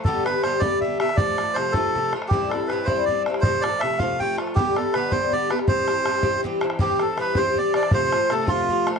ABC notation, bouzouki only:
X:1
M:6/8
L:1/8
Q:3/8=107
K:C
V:1 name="Bouzouki"
[G,,D,B,G] [D,B,G] [G,,D,B,G] [G,,D,B,G] [G,,D,B,G] [D,B,G] | [C,F,A,F] [F,A,F] [C,F,A,F] [C,F,A,F] [C,F,A,F] [F,A,F] | [G,,G,CE] [G,CE] [G,,G,CE] [G,,G,CE] [G,,G,CE] [G,CE] | [C,F,A,F] [F,A,F] [C,F,A,F] [C,F,A,F] [C,F,A,F] [F,A,F] |
[G,,D,B,G] [D,B,G] [G,,D,B,G] [G,,D,B,G] [G,,D,B,G] [D,B,G] | [G,,E,CG] [E,CG] [G,,E,CG] [G,,E,CG] [G,,E,CG] [E,CG] | [G,,E,CG] [E,CG] [G,,E,CG] [G,,E,CG] [G,,E,CG] [E,CG] | [C,F,A,F] [F,A,F] [C,F,A,F] [C,F,A,F] [C,F,A,F] [F,A,F] |]